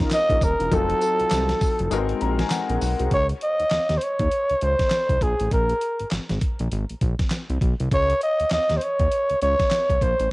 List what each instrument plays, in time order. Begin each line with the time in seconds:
Already playing: grand piano G#3 C#4 D#4 F4 A#4
0.00 analog polysynth C#4 D#4 F4 A#4, kick, snare, closed hi-hat
0.11 muted trumpet D#5, snare, clap, closed hi-hat, tambourine
0.29 analog synth bass A#1, analog polysynth C#4 D#4 F4 A#4, kick, closed hi-hat
0.41 analog synth bass D#1, muted trumpet A#4, kick, closed hi-hat, tambourine
0.59 analog synth bass E1, analog polysynth C#4 D#4 F4 A#4, closed hi-hat
0.71 analog synth bass F1, grand piano F#3 C4 D#4 F4 A4, analog polysynth D#4 F4 F#4 A4, muted trumpet A4, kick, closed hi-hat, tambourine
0.90 closed hi-hat
1.01 analog polysynth D#4 F4 F#4 A4, closed hi-hat, tambourine
1.20 analog synth bass C2, closed hi-hat
1.31 analog synth bass C2, snare, clap, closed hi-hat, tambourine
1.49 snare, closed hi-hat
1.61 kick, open hi-hat, tambourine
1.79 analog synth bass F1, closed hi-hat
1.91 analog synth bass G#1, grand piano G#3 B3 D#4 F#4 A#4, closed hi-hat, tambourine
1.98 grand piano C4
2.09 closed hi-hat
2.21 analog synth bass A#1, analog polysynth C4 F#4 G#4 A#4, grand piano A#5, closed hi-hat
2.39 grand piano G#5, snare, closed hi-hat
2.50 grand piano F#5, snare, clap, closed hi-hat, tambourine
2.69 analog synth bass A#1, analog polysynth C4 F#4 G#4 A#4, closed hi-hat
2.81 analog synth bass B1, grand piano F#5, open hi-hat, tambourine
2.99 analog synth bass C2, analog polysynth C4 F#4 G#4 A#4, closed hi-hat
3.11 analog synth bass C#2, muted trumpet C#5, kick, closed hi-hat
3.29 closed hi-hat
3.41 muted trumpet D#5, closed hi-hat
3.60 analog synth bass D#2, closed hi-hat
3.71 analog synth bass D#2, snare, clap, closed hi-hat
3.89 analog synth bass D#2, snare, closed hi-hat
3.97 muted trumpet C5, closed hi-hat
4.03 muted trumpet C#5
4.19 analog synth bass D#2, kick, closed hi-hat
4.31 closed hi-hat
4.49 analog synth bass C#2, closed hi-hat
4.61 analog synth bass C#2, muted trumpet C5, closed hi-hat
4.79 kick, snare, closed hi-hat
4.90 snare, clap, closed hi-hat
5.09 analog synth bass C2, kick, closed hi-hat
5.21 analog synth bass A#1, muted trumpet G#4, kick, closed hi-hat
5.40 analog synth bass A1, closed hi-hat
5.51 analog synth bass A#1, muted trumpet A#4, kick, closed hi-hat
5.69 closed hi-hat
5.81 closed hi-hat
5.99 analog synth bass G#1, closed hi-hat
6.11 analog synth bass G#1, snare, clap, closed hi-hat
6.29 analog synth bass G#1, snare, closed hi-hat
6.41 kick, closed hi-hat
6.59 analog synth bass A#1, closed hi-hat
6.72 analog synth bass G#1, closed hi-hat
6.90 analog synth bass A#1, closed hi-hat
7.01 analog synth bass A#1, kick, closed hi-hat
7.19 kick, snare, closed hi-hat
7.30 snare, clap, closed hi-hat
7.50 analog synth bass C2, closed hi-hat
7.61 analog synth bass B1, kick, closed hi-hat
7.80 analog synth bass C2, closed hi-hat
7.91 analog synth bass C#2, muted trumpet C#5, kick, closed hi-hat
8.10 closed hi-hat
8.21 muted trumpet D#5, closed hi-hat
8.40 analog synth bass D#2, closed hi-hat
8.50 analog synth bass D#2, muted trumpet D#5, snare, clap, closed hi-hat
8.69 analog synth bass D#2, snare, closed hi-hat
8.77 muted trumpet C5
8.81 muted trumpet C#5, closed hi-hat
8.99 analog synth bass D#2, kick, closed hi-hat
9.12 closed hi-hat
9.29 analog synth bass C#2, closed hi-hat
9.41 analog synth bass C#2, muted trumpet C#5, closed hi-hat
9.59 kick, snare, closed hi-hat
9.71 snare, clap, closed hi-hat
9.89 analog synth bass C2, kick, closed hi-hat
10.01 analog synth bass A#1, muted trumpet C5, kick, closed hi-hat
10.20 analog synth bass A1, closed hi-hat